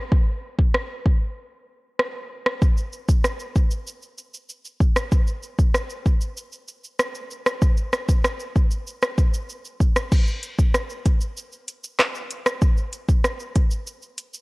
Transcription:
0.12 kick loud
0.59 kick medium
0.74 cross-stick medium
1.06 kick medium
1.99 cross-stick medium
2.46 cross-stick medium
2.62 kick loud
2.62 shaker medium
2.77 shaker medium
2.93 shaker medium
3.09 kick medium
3.09 shaker medium
3.24 cross-stick medium
3.24 shaker medium
3.40 shaker soft
3.56 kick medium
3.56 shaker soft
3.71 shaker medium
3.87 shaker medium
4.02 shaker medium
4.18 shaker medium
4.34 shaker medium
4.49 shaker medium
4.65 shaker soft
4.80 kick medium
4.80 shaker soft
4.96 cross-stick medium
4.96 shaker medium
5.12 kick loud
5.12 shaker medium
5.27 shaker medium
5.43 shaker soft
5.59 kick medium
5.59 shaker medium
5.74 cross-stick medium
5.74 shaker medium
5.90 shaker medium
6.06 kick medium
6.06 shaker soft
6.21 shaker medium
6.37 shaker medium
6.52 shaker medium
6.68 shaker medium
6.84 shaker medium
6.99 cross-stick medium
6.99 shaker medium
7.15 shaker soft
7.31 shaker medium
7.46 cross-stick medium
7.46 shaker medium
7.62 kick loud
7.62 shaker medium
7.77 shaker medium
7.93 cross-stick medium
7.93 shaker medium
8.09 kick medium
8.09 shaker medium
8.24 cross-stick medium
8.24 shaker medium
8.40 shaker medium
8.56 kick medium
8.56 shaker soft
8.71 shaker medium
8.87 shaker medium
9.02 cross-stick medium
9.02 shaker medium
9.18 kick loud
9.18 shaker medium
9.34 shaker medium
9.49 shaker medium
9.65 shaker soft
9.80 kick medium
9.80 shaker soft
9.96 cross-stick medium
9.96 shaker medium
10.12 kick loud
10.12 crash loud
10.12 shaker medium
10.27 shaker medium
10.43 closed hi-hat medium
10.43 shaker medium
10.59 kick medium
10.59 shaker medium
10.74 cross-stick medium
10.74 shaker medium
10.90 shaker medium
11.06 kick loud
11.06 closed hi-hat medium
11.06 shaker soft
11.21 shaker medium
11.37 shaker medium
11.52 shaker medium
11.68 closed hi-hat medium
11.68 shaker medium
11.84 shaker medium
11.99 cross-stick loud
11.99 clap loud
11.99 shaker medium
12.15 shaker medium
12.31 closed hi-hat medium
12.31 shaker medium
12.46 cross-stick loud
12.46 shaker medium
12.62 kick loud
12.62 shaker medium
12.77 shaker medium
12.93 closed hi-hat medium
12.93 shaker medium
13.09 kick loud
13.09 shaker medium
13.24 cross-stick medium
13.24 shaker medium
13.40 shaker medium
13.56 kick medium
13.56 closed hi-hat medium
13.56 shaker soft
13.71 shaker medium
13.87 shaker medium
14.02 shaker medium
14.18 closed hi-hat medium
14.18 shaker medium
14.34 shaker medium

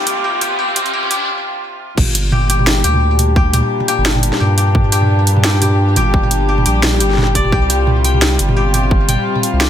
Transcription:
0.00 1.98 C3 medium
0.00 1.97 G3 medium
0.00 2.53 F4 medium
0.00 1.97 G4 medium
0.00 riser medium
0.07 0.24 G4 medium
0.07 closed hi-hat medium
0.07 mid tom medium
0.24 0.41 G4 medium
0.41 0.58 G4 medium
0.41 closed hi-hat medium
0.41 mid tom medium
0.59 0.76 G4 medium
0.68 mid tom medium
0.76 0.93 G4 medium
0.76 closed hi-hat medium
0.86 closed hi-hat soft
0.93 1.11 G4 medium
1.03 mid tom medium
1.11 2.32 G4 medium
1.11 closed hi-hat medium
1.98 2.83 G1 loud
1.98 7.53 A#2 medium
1.98 kick loud
1.98 mid tom medium
1.98 crash loud
2.15 closed hi-hat medium
2.32 2.49 G4 medium
2.32 mid tom medium
2.42 9.70 G4 medium
2.47 9.70 G3 medium
2.47 2.84 G4 medium
2.47 closed hi-hat medium
2.59 mid tom medium
2.67 snare loud
2.84 3.62 D2 medium
2.84 3.36 G4 loud
2.84 closed hi-hat medium
2.89 8.14 D4 medium
2.94 mid tom medium
3.19 closed hi-hat medium
3.19 mid tom medium
3.36 3.53 G4 medium
3.36 kick loud
3.54 3.88 G4 medium
3.54 closed hi-hat medium
3.54 mid tom medium
3.80 mid tom medium
3.88 4.40 G4 loud
3.88 closed hi-hat medium
3.98 4.31 G1 loud
4.06 snare loud
4.15 mid tom medium
4.23 closed hi-hat medium
4.33 snare soft
4.40 5.98 G2 medium
4.40 4.57 G4 medium
4.40 mid tom medium
4.58 4.92 G4 medium
4.58 closed hi-hat medium
4.75 kick loud
4.75 mid tom medium
4.92 5.44 G4 loud
4.92 closed hi-hat medium
5.02 mid tom medium
5.27 closed hi-hat medium
5.37 mid tom medium
5.44 5.61 G4 medium
5.44 snare loud
5.62 5.96 G4 medium
5.62 closed hi-hat medium
5.62 mid tom soft
5.96 6.65 G1 loud
5.96 6.48 G4 loud
5.96 closed hi-hat medium
5.96 mid tom medium
6.14 kick loud
6.23 mid tom soft
6.31 closed hi-hat medium
6.49 6.65 G4 medium
6.58 mid tom medium
6.66 7.02 A#1 loud
6.66 7.00 G4 medium
6.66 closed hi-hat medium
6.83 snare loud
6.83 mid tom soft
7.00 7.37 G1 medium
7.00 7.52 G4 medium
7.00 closed hi-hat medium
7.10 snare soft
7.14 snare soft
7.18 snare soft
7.18 mid tom medium
7.23 snare soft
7.35 7.51 F1 medium
7.35 8.95 D5 loud
7.35 kick medium
7.35 closed hi-hat medium
7.45 mid tom medium
7.52 8.38 C2 loud
7.52 9.70 C3 medium
7.52 7.69 G4 medium
7.52 kick loud
7.52 mid tom soft
7.66 9.70 F4 medium
7.66 8.56 G4 medium
7.66 closed hi-hat medium
7.87 mid tom medium
8.04 9.08 G5 medium
8.04 closed hi-hat medium
8.14 mid tom soft
8.22 snare loud
8.39 9.17 G1 loud
8.39 closed hi-hat medium
8.49 mid tom medium
8.57 8.74 G4 medium
8.74 9.60 G4 medium
8.74 closed hi-hat medium
8.74 mid tom medium
8.91 kick loud
9.09 9.70 G5 medium
9.09 closed hi-hat medium
9.09 mid tom medium
9.36 mid tom soft
9.43 closed hi-hat medium
9.53 9.70 C2 loud
9.61 9.70 G4 medium
9.61 snare loud

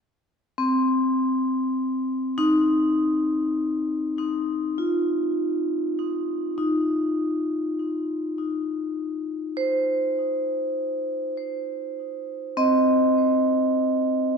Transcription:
0.58 2.62 C4 medium
2.38 5.75 D#4 medium
4.78 6.82 F4 soft
6.58 9.95 D#4 soft
9.57 12.95 C5 medium
12.57 14.38 C4 medium
12.57 14.38 D#5 medium

